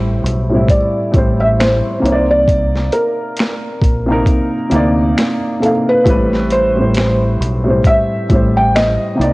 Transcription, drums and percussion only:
0.26 closed hi-hat
0.68 kick, closed hi-hat
1.14 kick, closed hi-hat
1.60 finger snap, snare, closed hi-hat
2.06 closed hi-hat
2.48 kick, closed hi-hat
2.76 snare
2.92 closed hi-hat
3.37 finger snap, snare, closed hi-hat
3.82 kick, closed hi-hat
4.26 kick, closed hi-hat
4.71 closed hi-hat
5.18 finger snap, snare, closed hi-hat
5.63 closed hi-hat
6.06 kick, closed hi-hat
6.33 snare
6.50 closed hi-hat
6.94 finger snap, snare, closed hi-hat
7.42 closed hi-hat
7.84 kick, closed hi-hat
8.30 kick, closed hi-hat
8.76 finger snap, snare, closed hi-hat
9.21 closed hi-hat

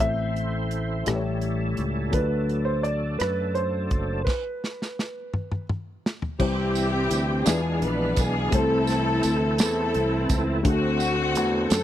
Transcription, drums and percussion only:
0.00 kick, closed hi-hat
0.36 closed hi-hat
0.71 closed hi-hat
1.06 cross-stick, closed hi-hat
1.42 closed hi-hat
1.77 closed hi-hat
2.13 kick, closed hi-hat
2.49 closed hi-hat
2.84 closed hi-hat
3.20 cross-stick, closed hi-hat
3.55 closed hi-hat
3.91 kick, closed hi-hat
4.27 kick, snare, crash
4.64 snare
4.82 snare
4.99 snare
5.34 mid tom
5.52 mid tom
5.69 mid tom
6.06 snare
6.22 floor tom
6.40 kick, crash
6.75 closed hi-hat, tambourine
7.11 closed hi-hat, tambourine
7.46 snare, closed hi-hat, tambourine
7.82 closed hi-hat
8.16 kick, closed hi-hat, tambourine
8.52 kick, closed hi-hat
8.87 snare, closed hi-hat, tambourine
9.23 closed hi-hat, tambourine
9.58 snare, closed hi-hat, tambourine
9.94 closed hi-hat
10.29 kick, closed hi-hat, tambourine
10.65 kick, closed hi-hat
11.00 closed hi-hat, tambourine
11.35 closed hi-hat, tambourine
11.70 snare, closed hi-hat, tambourine

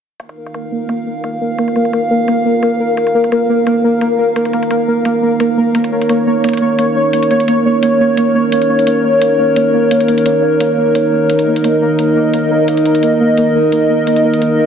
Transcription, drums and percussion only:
0.20 closed hi-hat
0.29 closed hi-hat
0.46 closed hi-hat
0.54 closed hi-hat
0.89 closed hi-hat
1.24 closed hi-hat
1.58 closed hi-hat
1.68 closed hi-hat
1.76 closed hi-hat
1.85 closed hi-hat
1.93 closed hi-hat
2.28 closed hi-hat
2.63 closed hi-hat
2.97 closed hi-hat
3.07 closed hi-hat
3.24 closed hi-hat
3.32 closed hi-hat
3.67 closed hi-hat
4.01 closed hi-hat
4.36 closed hi-hat
4.45 closed hi-hat
4.53 closed hi-hat
4.63 closed hi-hat
4.71 closed hi-hat
5.05 closed hi-hat
5.40 closed hi-hat
5.75 closed hi-hat
5.84 closed hi-hat
6.02 closed hi-hat
6.09 closed hi-hat
6.44 closed hi-hat
6.49 closed hi-hat
6.53 closed hi-hat
6.57 closed hi-hat
6.79 closed hi-hat
7.13 closed hi-hat
7.23 closed hi-hat
7.31 closed hi-hat
7.40 closed hi-hat
7.48 closed hi-hat
7.83 closed hi-hat
8.17 closed hi-hat
8.52 closed hi-hat
8.62 closed hi-hat
8.79 closed hi-hat
8.87 closed hi-hat
9.22 closed hi-hat
9.56 closed hi-hat
9.91 closed hi-hat
10.01 closed hi-hat
10.08 closed hi-hat
10.18 closed hi-hat
10.26 closed hi-hat
10.60 closed hi-hat
10.95 closed hi-hat
11.30 closed hi-hat
11.39 closed hi-hat
11.56 closed hi-hat
11.64 closed hi-hat
11.99 closed hi-hat
12.34 closed hi-hat
12.68 closed hi-hat
12.77 closed hi-hat
12.86 closed hi-hat
12.95 closed hi-hat
13.03 closed hi-hat
13.38 closed hi-hat
13.72 closed hi-hat
14.07 closed hi-hat
14.16 closed hi-hat
14.34 closed hi-hat
14.42 closed hi-hat

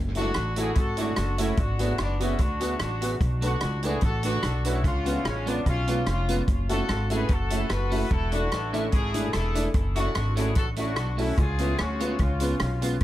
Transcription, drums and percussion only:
0.15 closed hi-hat
0.34 cross-stick, closed hi-hat
0.56 closed hi-hat
0.75 kick, closed hi-hat
0.97 closed hi-hat
1.16 cross-stick, closed hi-hat
1.38 closed hi-hat
1.57 kick, closed hi-hat
1.79 closed hi-hat
1.98 cross-stick, closed hi-hat
2.20 closed hi-hat
2.39 kick, closed hi-hat
2.61 closed hi-hat
2.80 cross-stick, closed hi-hat
3.02 closed hi-hat
3.21 kick, closed hi-hat
3.42 closed hi-hat
3.60 cross-stick, closed hi-hat
3.83 closed hi-hat
4.01 kick, closed hi-hat
4.23 closed hi-hat
4.43 cross-stick, closed hi-hat
4.65 closed hi-hat
4.84 kick, closed hi-hat
5.06 closed hi-hat
5.25 cross-stick, closed hi-hat
5.47 closed hi-hat
5.66 kick, closed hi-hat
5.88 closed hi-hat
6.07 cross-stick, closed hi-hat
6.29 closed hi-hat
6.48 kick, closed hi-hat
6.69 closed hi-hat
6.89 cross-stick, closed hi-hat
7.10 closed hi-hat
7.29 kick, closed hi-hat
7.50 closed hi-hat
7.70 cross-stick, closed hi-hat
7.92 open hi-hat
8.11 kick, closed hi-hat
8.32 closed hi-hat
8.52 cross-stick, closed hi-hat
8.74 closed hi-hat
8.92 kick, closed hi-hat
9.14 closed hi-hat
9.33 cross-stick, closed hi-hat
9.55 closed hi-hat
9.74 kick, closed hi-hat
9.96 closed hi-hat
10.15 cross-stick, closed hi-hat
10.37 closed hi-hat
10.55 kick, closed hi-hat
10.76 closed hi-hat
10.96 cross-stick, closed hi-hat
11.18 open hi-hat
11.37 kick, closed hi-hat
11.58 closed hi-hat
11.78 cross-stick, closed hi-hat
12.00 closed hi-hat
12.19 kick, closed hi-hat
12.40 closed hi-hat
12.60 cross-stick, closed hi-hat
12.82 closed hi-hat
13.00 closed hi-hat

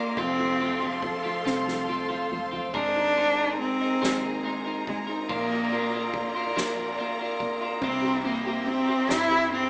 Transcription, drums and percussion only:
0.17 kick, ride
0.60 ride
1.02 kick, ride
1.46 snare
1.68 snare
2.31 mid tom
2.53 floor tom
2.74 kick, crash
3.17 ride
3.59 ride
4.02 snare, ride
4.45 ride
4.87 kick, ride
5.29 kick, ride
5.71 ride
6.14 kick, ride
6.56 snare, ride
6.98 ride
7.40 kick, ride
7.82 kick, ride
8.23 ride
8.66 ride
9.08 snare, ride
9.51 ride

